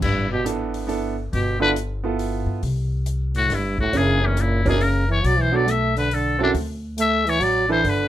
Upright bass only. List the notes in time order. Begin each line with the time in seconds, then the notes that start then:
0.02 G1
1.33 G1
2.46 G2
2.63 C2
3.48 G1
3.93 F#1
5.24 B1
6.54 D2
7.40 A1
7.84 G1